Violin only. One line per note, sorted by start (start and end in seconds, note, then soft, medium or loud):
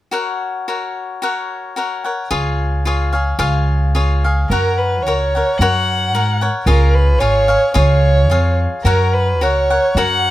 4.49 4.79 A#4 medium
4.77 5.04 B4 medium
5.03 5.59 C#5 medium
5.58 6.40 F#5 medium
6.65 6.96 A#4 medium
6.94 7.21 B4 medium
7.19 7.74 C#5 medium
7.75 8.55 C#5 medium
8.83 9.15 A#4 medium
9.13 9.43 B4 medium
9.42 9.99 C#5 medium
9.97 10.31 F#5 medium